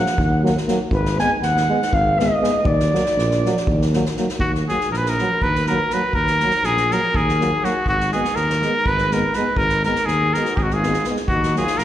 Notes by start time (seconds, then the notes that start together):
Already playing: F#5
0.06 snare
0.18 D#2, kick
0.43 F#3 A#3, snare
0.57 snare
0.67 F#3 A#3, snare
0.90 G#1 B4, kick
1.05 snare
1.19 G#3 B3 G#5, snare
1.41 D#2 F#5, snare
1.57 snare
1.69 G#3 B3
1.82 snare
1.92 G#1 F5, kick
2.17 G#3 B3 D#5, snare
2.41 G#3 B3, snare
2.64 D#2 D5, kick
2.80 snare
2.92 F#3 A#3, snare
3.06 snare
3.16 A#1, snare
3.31 snare
3.44 F#3 A#3, snare
3.57 snare
3.67 D#2, kick
3.82 snare
3.93 F#3 A#3, snare
4.05 snare
4.17 F#3 A#3, snare
4.29 snare
4.38 D#2 F#4, kick
4.55 snare
4.69 F#3 A#3 G#4, snare
4.80 snare
4.90 A#1 A#4, snare
4.97 B4
5.06 A#4, snare
5.18 F#3 A#3, snare
5.42 D#2 B4, kick
5.55 snare
5.66 F#3 A#3 A#4, snare
5.90 F#3 A#3 B4, snare
6.13 D#2 A#4, kick
6.27 snare
6.40 F#3 A#3, snare
6.50 snare
6.63 A#1 G#4, snare
6.77 snare
6.91 F#3 A#3 A#4, snare
7.14 D#2 G#4, kick
7.29 snare
7.40 F#3 A#3, snare
7.62 F#3 A#3 F#4, snare
7.86 G#1 F#4, kick
8.00 snare
8.12 G#3 B3 G#4, snare
8.24 snare
8.35 D#2 A#4, snare
8.50 snare
8.62 G#3 B3, snare
8.86 G#1 B4, kick
8.98 snare
9.11 G#3 B3 A#4, snare
9.33 G#3 B3 B4, snare
9.56 G#1 A#4, kick
9.69 snare
9.83 G#3 B3 A#4, snare
9.95 snare
10.06 D#2 G#4, snare
10.34 G#3 B3 A#4, snare
10.40 F#4
10.45 snare
10.56 G#1 G#4, kick
10.61 D#4 F#4
10.65 D#4
10.70 G#4, snare
10.76 F4
10.83 G#3 B3, snare
10.93 snare
11.04 B3, snare
11.09 G#3
11.16 snare
11.28 D#2 F#4, kick
11.33 D#4
11.43 snare
11.55 F#3 A#3 F4 G#4, snare
11.67 snare
11.78 A#1 A#4, snare